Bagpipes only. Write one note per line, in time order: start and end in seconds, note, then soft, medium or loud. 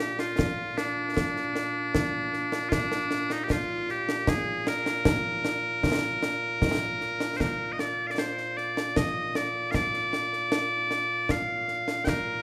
0.00 12.42 A#2 medium
0.00 0.19 G4 medium
0.19 0.78 F4 medium
0.78 2.69 D4 medium
2.69 3.32 D4 medium
2.69 2.73 F4 medium
3.32 3.44 D#4 medium
3.44 3.52 G4 medium
3.52 3.90 F4 loud
3.90 4.29 G4 medium
4.29 4.68 G#4 loud
4.68 7.37 A#4 loud
7.37 7.41 C5 medium
7.41 7.72 A#4 medium
7.72 7.80 D#5 medium
7.80 8.07 D5 medium
8.07 8.11 F5 medium
8.11 8.19 D5 medium
8.19 8.57 C5 medium
8.57 8.97 D5 medium
8.97 9.36 D#5 medium
9.36 9.71 D5 medium
9.71 9.75 F5 loud
9.75 11.31 D5 loud
11.31 12.04 F5 medium
12.04 12.09 G5 medium
12.09 12.42 A#4 medium